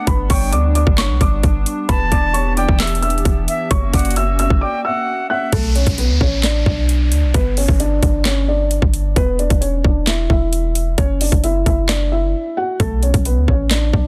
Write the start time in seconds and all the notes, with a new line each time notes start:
Already playing: B3 D4
0.07 G1 G3 B4 B5, kick, closed hi-hat
0.30 G1 C#5 G5 C#6, kick, open hi-hat
0.52 D2 D5 D6, closed hi-hat
0.75 D5 D6, closed hi-hat
0.87 G1, kick
0.98 C#5 C#6, snare, clap, closed hi-hat
1.09 B1
1.21 G1 D5 D6, kick, closed hi-hat
1.43 G1, kick, closed hi-hat
1.66 closed hi-hat
1.89 E1 E3 B3 G4 B4 A5 B5, kick, closed hi-hat
2.12 E1 D5 D6, kick, closed hi-hat
2.34 C#5 C#6, closed hi-hat
2.57 D5 G5 D6, closed hi-hat
2.69 E1, kick
2.80 E5 E6, snare, clap, closed hi-hat
2.87 closed hi-hat
2.95 closed hi-hat
3.02 E5 E6, closed hi-hat
3.10 closed hi-hat
3.18 closed hi-hat
3.25 E1, kick, closed hi-hat
3.48 E5, closed hi-hat
3.71 F#1 A#3 C#4 F#4 C#5 C#6, kick, closed hi-hat
3.94 F#1 D5 F#5 D6, kick, closed hi-hat, open hi-hat
3.99 closed hi-hat
4.05 closed hi-hat
4.11 closed hi-hat
4.16 E5 E6, closed hi-hat
4.39 E5 E6, closed hi-hat
4.50 F#1, kick
4.61 D5 G5 D6
4.84 E5 F#5 E6
5.30 E5 F#5 F#6
5.52 B1 A3 A4, kick, closed hi-hat, downlifter
5.75 C#4 C#5, closed hi-hat
5.87 B1, kick, closed hi-hat
5.98 B3 B4, closed hi-hat
6.09 D2
6.21 A1 C#4 C#5, kick
6.43 D4 D5, snare, clap, closed hi-hat
6.66 B1 D4 D5, kick
6.89 closed hi-hat
7.12 D2, closed hi-hat
7.23 B1
7.34 G1 B3 B4, kick, closed hi-hat
7.57 C#4 C#5, open hi-hat
7.68 G1, kick
7.80 D4 D5, closed hi-hat
8.03 G1 D4 D5, kick, closed hi-hat
8.25 C#4 C#5, snare, clap, closed hi-hat
8.48 D4 D5
8.71 closed hi-hat
8.82 G1, kick
8.94 closed hi-hat
9.16 E1 B3 B4, kick, closed hi-hat
9.39 D4 D5, closed hi-hat
9.50 E1, kick, closed hi-hat
9.61 C#4 C#5, closed hi-hat
9.84 E1 D4 D5, kick
10.07 E4 E5, snare, clap, closed hi-hat
10.30 E1 E4 E5, kick
10.53 closed hi-hat
10.75 closed hi-hat
10.98 F#1 C#4 C#5, kick, closed hi-hat
11.21 D4 D5, closed hi-hat, open hi-hat
11.32 F#1, kick, closed hi-hat
11.44 E4 E5, closed hi-hat
11.66 F#1 E4 E5, kick, closed hi-hat
11.88 D4 D5, snare, clap, closed hi-hat
12.12 E4 E5
12.57 F#4 F#5
12.80 B1 A3 A4, kick, closed hi-hat
13.03 C#4 C#5, closed hi-hat
13.14 B1, kick, closed hi-hat
13.25 B3 B4, closed hi-hat
13.37 D2
13.48 A1 C#4 C#5, kick
13.71 D4 D5, snare, clap, closed hi-hat
13.93 B1 D4 D5, kick